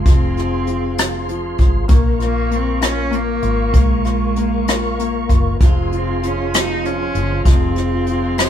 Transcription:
Already playing: grand piano F3, tonewheel organ G#4 F5 C6
0.05 fretless electric bass F1, grand piano F3, cello C4, kick, closed hi-hat
0.37 grand piano F3, cross-stick, closed hi-hat
0.67 grand piano F3, closed hi-hat
0.98 grand piano F3, cross-stick, closed hi-hat
1.29 grand piano F3, closed hi-hat
1.58 fretless electric bass G#1, grand piano F3, kick, closed hi-hat
1.88 fretless electric bass A#1, grand piano A#3, tonewheel organ A#4 C#6, kick, closed hi-hat
2.19 cello A#3, grand piano F4, cross-stick, closed hi-hat
2.51 grand piano A#3, closed hi-hat
2.55 cello C4
2.81 grand piano F4, cross-stick, closed hi-hat
2.85 cello C#4
3.11 grand piano A#3, closed hi-hat
3.15 cello A#3
3.42 fretless electric bass G#1, grand piano F4, closed hi-hat
3.73 fretless electric bass A#1, grand piano A#3, kick, closed hi-hat
3.77 cello G#3
4.04 grand piano F4, cross-stick, closed hi-hat
4.36 grand piano A#3, closed hi-hat
4.68 grand piano F4, cross-stick, closed hi-hat
4.99 grand piano A#3, closed hi-hat
5.29 fretless electric bass F#1, grand piano F4, kick, closed hi-hat
5.60 fretless electric bass F1, steel-string acoustic guitar F2 C3 F3 G#3 C4 F4, grand piano F3, tonewheel organ G#4 F5 C6, kick, closed hi-hat
5.92 grand piano F3, cello C4, closed hi-hat
6.07 steel-string acoustic guitar F3 G#3 C4 F4
6.22 steel-string acoustic guitar F3 G#3 C4 F4, grand piano F3, cello C#4, closed hi-hat
6.38 steel-string acoustic guitar F3 G#3 C4 F4
6.54 steel-string acoustic guitar F2 C3 F3 G#3 C4 F4, grand piano F3, cello D#4, cross-stick, closed hi-hat
6.84 grand piano F3, cello C#4, closed hi-hat
7.00 steel-string acoustic guitar F3 G#3 C4 F4
7.15 fretless electric bass F#1, steel-string acoustic guitar F3 G#3 C4 F4, grand piano F3, closed hi-hat
7.30 steel-string acoustic guitar F3 G#3 C4 F4
7.45 fretless electric bass F1, steel-string acoustic guitar F2 C3 F3 G#3 C4 F4, grand piano F3, cello C4, kick, closed hi-hat
7.76 grand piano F3, cross-stick, closed hi-hat
7.92 steel-string acoustic guitar F3 G#3 C4 F4
8.06 steel-string acoustic guitar F3 G#3 C4 F4, grand piano F3, closed hi-hat
8.22 steel-string acoustic guitar F3 G#3 C4 F4
8.37 steel-string acoustic guitar F2 C3 F3 G#3 C4 F4, grand piano F3, cross-stick, closed hi-hat

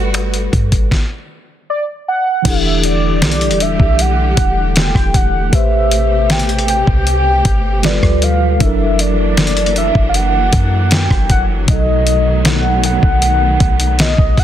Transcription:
Already playing: 808-style bass G1, tine electric piano G3 F#4 A4 B4, string section G3 A3 B3 F#4
0.14 finger snap, closed hi-hat
0.34 closed hi-hat
0.53 808-style bass G2, kick, closed hi-hat
0.72 808-style bass G1, kick, closed hi-hat
0.91 kick, snare
1.70 soft synth lead D5
2.08 soft synth lead F#5
2.42 808-style bass E1, string section D3 G3 A3 G4, tine electric piano E3 D4 E4, kick, closed hi-hat, crash
2.47 tine electric piano G4 A4, soft synth lead E5
2.84 soft synth lead D5, closed hi-hat
3.22 808-style bass B1, snare, closed hi-hat
3.32 closed hi-hat
3.41 closed hi-hat
3.51 808-style bass E1, closed hi-hat
3.60 soft synth lead E5, closed hi-hat
3.80 808-style bass B1, kick
3.99 soft synth lead F#5, closed hi-hat
4.37 808-style bass E1, kick, closed hi-hat
4.76 soft synth lead G5, snare, closed hi-hat
4.95 808-style bass E1, kick, cross-stick
5.14 soft synth lead F#5, kick, closed hi-hat
5.50 808-style bass A1, string section B2 C3 G4, tine electric piano A3 G4, kick, closed hi-hat
5.54 tine electric piano B4 C5, soft synth lead E5
5.91 closed hi-hat
6.30 soft synth lead G5, snare, closed hi-hat
6.39 closed hi-hat
6.49 closed hi-hat
6.59 closed hi-hat
6.68 soft synth lead G5, closed hi-hat
6.87 808-style bass C2, kick
7.07 closed hi-hat
7.45 808-style bass G1, kick, closed hi-hat
7.83 string section F3, tine electric piano G3 F4 A4 B4, soft synth lead D5, snare, closed hi-hat
8.03 808-style bass D2, kick, cross-stick
8.22 soft synth lead F5, closed hi-hat
8.58 808-style bass F#1, string section E3 F#3 A#3 D4, tine electric piano F#3 D4 E4, soft synth lead E5, kick, closed hi-hat
8.64 tine electric piano A4 A#4
8.99 soft synth lead D5, closed hi-hat
9.37 snare, closed hi-hat
9.47 closed hi-hat
9.57 closed hi-hat
9.66 closed hi-hat
9.76 soft synth lead E5, closed hi-hat
9.95 808-style bass F#1, kick
10.09 soft synth lead F5
10.14 soft synth lead F#5, closed hi-hat
10.53 808-style bass F#2, kick, closed hi-hat
10.91 soft synth lead G5, snare, closed hi-hat
11.10 808-style bass F#1, kick, cross-stick
11.30 soft synth lead F#5, kick, closed hi-hat
11.66 808-style bass B1, tine electric piano B2 F#3, string section D#3 A3 B3, soft synth lead D#5, kick, closed hi-hat
11.71 tine electric piano D#4 A4
12.07 closed hi-hat
12.45 soft synth lead F#5, snare, closed hi-hat
12.84 soft synth lead F#5, closed hi-hat
13.03 808-style bass B1, kick
13.22 closed hi-hat
13.60 808-style bass B1, kick, closed hi-hat
13.80 closed hi-hat
13.99 soft synth lead D#5, snare, closed hi-hat
14.18 808-style bass B1, kick
14.37 soft synth lead F#5, kick, open hi-hat

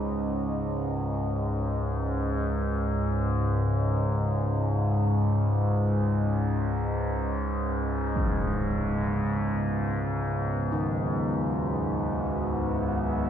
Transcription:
Already playing: synth drone C#2 G#2, church bells E3 F#4, ambient pad C#4 D#5
8.16 ambient pad B3, impact
10.16 ambient pad F#4
10.72 church bells D#3
11.27 ambient pad E5

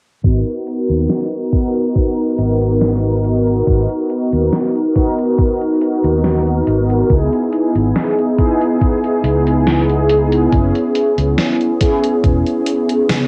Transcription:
0.23 fretless electric bass G#1, analog polysynth B3 D#4 F#4 A#4, kick, closed hi-hat
0.47 closed hi-hat
0.67 closed hi-hat
0.90 fretless electric bass D#2, closed hi-hat
1.10 snare, closed hi-hat
1.32 closed hi-hat
1.52 analog polysynth B3 D#4 F#4 A#4, kick, closed hi-hat
1.75 closed hi-hat
1.96 kick, closed hi-hat
2.18 closed hi-hat
2.38 fretless electric bass G#1, closed hi-hat
2.61 closed hi-hat
2.81 snare, closed hi-hat
3.04 closed hi-hat
3.24 closed hi-hat
3.47 closed hi-hat
3.65 fretless electric bass G#1, analog polysynth B3 D#4 F#4 A#4, kick, closed hi-hat
3.90 closed hi-hat
4.10 closed hi-hat
4.33 fretless electric bass D#2, closed hi-hat
4.53 snare, closed hi-hat
4.75 closed hi-hat
4.95 analog polysynth B3 D#4 F#4 A#4, kick, snare, closed hi-hat
5.18 closed hi-hat
5.38 kick, closed hi-hat
5.61 closed hi-hat
5.81 closed hi-hat
6.04 fretless electric bass D#2, closed hi-hat
6.24 snare, closed hi-hat
6.47 closed hi-hat
6.67 fretless electric bass G#1, closed hi-hat
6.90 closed hi-hat
7.09 fretless electric bass C#2, analog polysynth B3 D#4 E4 G#4, kick, closed hi-hat
7.33 closed hi-hat
7.52 closed hi-hat
7.75 fretless electric bass G#1, closed hi-hat
7.96 snare, closed hi-hat
8.18 closed hi-hat
8.37 analog polysynth B3 D#4 E4 G#4, kick, closed hi-hat
8.61 closed hi-hat
8.81 kick, closed hi-hat
9.04 closed hi-hat
9.24 fretless electric bass C#2, closed hi-hat
9.47 closed hi-hat
9.67 snare, closed hi-hat
9.89 closed hi-hat
10.09 closed hi-hat
10.32 closed hi-hat
10.51 fretless electric bass F#1, analog polysynth B3 C#4 E4 G#4, kick, closed hi-hat
10.75 closed hi-hat
10.95 closed hi-hat
11.18 fretless electric bass C#2, closed hi-hat
11.38 snare, closed hi-hat
11.61 closed hi-hat
11.80 analog polysynth B3 C#4 E4 G#4, kick, snare, closed hi-hat
12.04 closed hi-hat
12.24 fretless electric bass E1, kick, closed hi-hat
12.47 closed hi-hat
12.66 closed hi-hat
12.89 closed hi-hat
13.09 snare, closed hi-hat, high tom

